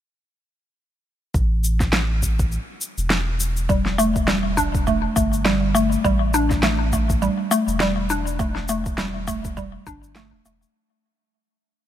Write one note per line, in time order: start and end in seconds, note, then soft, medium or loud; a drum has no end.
1.34 2.58 A1 medium
1.34 kick loud
1.34 shaker soft
1.64 shaker medium
1.80 kick medium
1.80 snare soft
1.80 shaker soft
1.93 snare loud
1.93 shaker soft
2.23 kick medium
2.23 shaker medium
2.39 kick loud
2.39 shaker soft
2.52 shaker soft
2.81 shaker medium
2.98 5.08 E1 loud
2.98 shaker soft
3.10 snare loud
3.10 shaker soft
3.40 shaker medium
3.57 shaker soft
3.69 3.97 G3 medium
3.69 kick loud
3.69 shaker soft
3.86 snare soft
3.98 4.26 A3 medium
3.98 shaker medium
4.16 kick medium
4.16 shaker soft
4.27 4.44 G3 medium
4.27 snare loud
4.27 shaker soft
4.57 4.85 D4 medium
4.57 kick medium
4.57 shaker medium
4.75 kick loud
4.75 shaker soft
4.87 5.15 A3 medium
4.87 kick medium
4.87 shaker soft
5.16 5.97 G1 medium
5.16 5.44 A3 medium
5.16 kick loud
5.16 shaker medium
5.33 shaker soft
5.45 5.73 G3 medium
5.45 snare loud
5.45 shaker soft
5.75 6.03 A3 loud
5.75 shaker medium
5.92 shaker soft
6.04 7.28 A1 loud
6.04 6.20 G3 loud
6.04 kick loud
6.04 shaker soft
6.34 6.62 D4 loud
6.34 shaker medium
6.50 kick loud
6.50 snare soft
6.50 shaker soft
6.63 6.91 A3 medium
6.63 snare loud
6.63 shaker soft
6.93 7.21 A3 medium
6.93 kick medium
6.93 shaker medium
7.10 kick loud
7.10 shaker soft
7.22 7.50 G3 medium
7.22 shaker soft
7.51 7.79 A3 loud
7.51 shaker medium
7.68 9.78 E1 loud
7.68 shaker soft
7.80 7.97 G3 loud
7.80 snare loud
7.80 shaker soft
8.10 8.38 D4 medium
8.10 shaker medium
8.27 shaker soft
8.39 8.68 A3 medium
8.39 kick loud
8.39 shaker soft
8.56 snare soft
8.68 8.97 A3 medium
8.68 shaker medium
8.86 kick loud
8.86 shaker soft
8.98 9.26 G3 medium
8.98 snare loud
8.98 shaker soft
9.28 9.56 A3 loud
9.28 kick medium
9.28 shaker medium
9.45 kick loud
9.45 shaker soft
9.57 9.73 G3 loud
9.57 kick medium
9.57 shaker soft
9.87 10.33 G1 loud
9.87 10.15 D4 loud
9.87 kick loud
9.87 shaker medium
10.03 shaker soft
10.16 10.44 A3 medium
10.16 snare loud
10.16 shaker soft
10.33 10.41 E1 medium
10.45 10.65 E1 medium
10.45 10.74 A3 medium
10.45 shaker medium
10.62 shaker soft